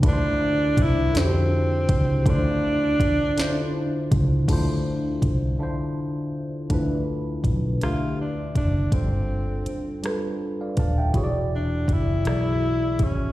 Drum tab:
CC |------|------|x-----|------|
HH |x-xx-x|x-xx-x|x-x---|x-xx-x|
SD |---o--|---o--|------|---r--|
BD |o-o--o|o-o--o|o-o---|o-o--o|

CC |------|------|
HH |x-xx-x|x-xx-x|
SD |---r--|---r--|
BD |o----o|o-o--o|